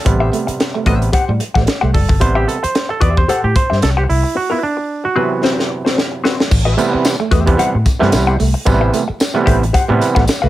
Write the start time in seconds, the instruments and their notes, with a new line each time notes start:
Already playing: clav A4
0.05 fingered electric bass A1, clav C3 G3 B3, clean electric guitar G3, muted hollow-body jazz guitar stroke, kick, closed hi-hat
0.20 hollow-body jazz guitar G4 C5 E5
0.33 clean electric guitar A3, closed hi-hat
0.47 muted hollow-body jazz guitar stroke, muted fingered electric bass stroke, muted clean electric guitar stroke, closed hi-hat
0.60 muted clean electric guitar stroke, snare, closed hi-hat
0.74 clean electric guitar A3, muted hollow-body jazz guitar stroke
0.86 fingered electric bass A1, clav C3 G3 B3, clean electric guitar A3, hollow-body jazz guitar G4 C5 E5, kick, closed hi-hat
1.01 muted hollow-body jazz guitar stroke, closed hi-hat
1.12 hollow-body jazz guitar G4 C5 F#5, kick, closed hi-hat
1.29 fingered electric bass A2, clean electric guitar G3
1.40 muted hollow-body jazz guitar stroke, muted clean electric guitar stroke, closed hi-hat
1.54 fingered electric bass A1, clean electric guitar A3, hollow-body jazz guitar G4 C5 F#5, kick, snare
1.66 muted hollow-body jazz guitar stroke, muted clean electric guitar stroke, snare, closed hi-hat
1.81 fingered electric bass C2, clean electric guitar A3, hollow-body jazz guitar G4 C5 F#5
1.93 fingered electric bass F#1, clean electric guitar G3, clav A4, muted hollow-body jazz guitar stroke, kick, open hi-hat
2.09 fingered electric bass G1, muted hollow-body jazz guitar stroke, kick
2.20 fingered electric bass A1, clav C3 G3 B3 C5, muted hollow-body jazz guitar stroke, kick, closed hi-hat
2.35 clav G4, hollow-body jazz guitar G4 C5 E5
2.48 clav A4, closed hi-hat
2.63 clav C5, muted hollow-body jazz guitar stroke, muted fingered electric bass stroke, closed hi-hat
2.75 snare, closed hi-hat
2.89 clav A4, muted hollow-body jazz guitar stroke
3.00 fingered electric bass E2, hollow-body jazz guitar G4 C5 E5, clav D5, kick, closed hi-hat
3.16 clav C5, muted hollow-body jazz guitar stroke, kick
3.28 hollow-body jazz guitar G4 C5 F#5, clav A4, muted fingered electric bass stroke, closed hi-hat
3.44 fingered electric bass A2, clav G4
3.55 clav C5, muted hollow-body jazz guitar stroke, kick, closed hi-hat
3.70 fingered electric bass G2, hollow-body jazz guitar G4 C5 E5, snare
3.81 fingered electric bass C2, clav A4, muted hollow-body jazz guitar stroke, snare, closed hi-hat
3.97 hollow-body jazz guitar G4 C5 F#5, clav G4
4.09 fingered electric bass C2, clav E4, muted hollow-body jazz guitar stroke, open hi-hat
4.23 muted hollow-body jazz guitar stroke
4.35 clav F#4, muted hollow-body jazz guitar stroke
4.50 hollow-body jazz guitar C4 F#4 B4, clav E4
4.62 clav D4, muted hollow-body jazz guitar stroke
4.77 muted hollow-body jazz guitar stroke
5.04 clav F#4, muted hollow-body jazz guitar stroke
5.16 clav C3 E3 F#3 B3, hollow-body jazz guitar C4 F#4 B4
5.31 muted hollow-body jazz guitar stroke
5.43 hollow-body jazz guitar C4 F#4 C5, snare
5.59 snare
5.70 muted hollow-body jazz guitar stroke
5.85 hollow-body jazz guitar C4 F#4 C5, snare
5.98 snare
6.12 muted hollow-body jazz guitar stroke
6.24 hollow-body jazz guitar C4 F#4 B4, snare
6.38 muted hollow-body jazz guitar stroke, snare
6.51 fingered electric bass A1, muted hollow-body jazz guitar stroke, kick, crash, tambourine
6.65 hollow-body jazz guitar G4 C5 E5, muted clean electric guitar stroke
6.77 clav C3 E3 G3 B3, clean electric guitar A3, muted hollow-body jazz guitar stroke, closed hi-hat, tambourine
6.92 clean electric guitar C4, muted hollow-body jazz guitar stroke, muted fingered electric bass stroke
7.05 muted clean electric guitar stroke, snare, closed hi-hat, tambourine
7.20 clean electric guitar A3, muted hollow-body jazz guitar stroke
7.31 fingered electric bass E2, clean electric guitar A3, hollow-body jazz guitar G4 C5 E5, kick, closed hi-hat, tambourine
7.46 clav C3 E3 G3 B3, muted hollow-body jazz guitar stroke, kick, closed hi-hat
7.58 clean electric guitar G3, hollow-body jazz guitar G4 C5 F#5, muted fingered electric bass stroke, closed hi-hat
7.75 fingered electric bass A2
7.85 muted hollow-body jazz guitar stroke, muted clean electric guitar stroke, kick, closed hi-hat, tambourine
7.99 fingered electric bass G2, clav C3 E3 G3 B3, clean electric guitar A3, hollow-body jazz guitar G4 C5 E5, snare
8.12 fingered electric bass C2, muted hollow-body jazz guitar stroke, snare, closed hi-hat, tambourine
8.27 hollow-body jazz guitar G4 C5 F#5
8.39 fingered electric bass C2, clean electric guitar A3, muted hollow-body jazz guitar stroke, open hi-hat, tambourine
8.54 muted hollow-body jazz guitar stroke
8.65 fingered electric bass A1, clav C3 E3 G3 B3, clean electric guitar G3, muted hollow-body jazz guitar stroke, kick, closed hi-hat, tambourine
8.81 hollow-body jazz guitar G4 C5 E5
8.93 clean electric guitar A3, muted hollow-body jazz guitar stroke, closed hi-hat, tambourine
9.08 muted hollow-body jazz guitar stroke, muted clean electric guitar stroke, muted fingered electric bass stroke
9.20 muted clean electric guitar stroke, snare, closed hi-hat, tambourine
9.34 clav C3 E3 G3 B3, clean electric guitar A3, muted hollow-body jazz guitar stroke
9.46 fingered electric bass A1, clean electric guitar A3, hollow-body jazz guitar G4 C5 E5, kick, closed hi-hat
9.62 muted hollow-body jazz guitar stroke, closed hi-hat
9.73 hollow-body jazz guitar G4 C5 F#5, kick, closed hi-hat
9.88 fingered electric bass A2, clav C3 E3 G3 B3, clean electric guitar G3
10.00 muted hollow-body jazz guitar stroke, muted clean electric guitar stroke, closed hi-hat, tambourine
10.15 fingered electric bass A1, clean electric guitar A3, hollow-body jazz guitar G4 C5 F#5, kick, snare
10.27 muted hollow-body jazz guitar stroke, muted clean electric guitar stroke, snare, closed hi-hat, tambourine
10.42 fingered electric bass C2, clean electric guitar A3, hollow-body jazz guitar G4 C5 F#5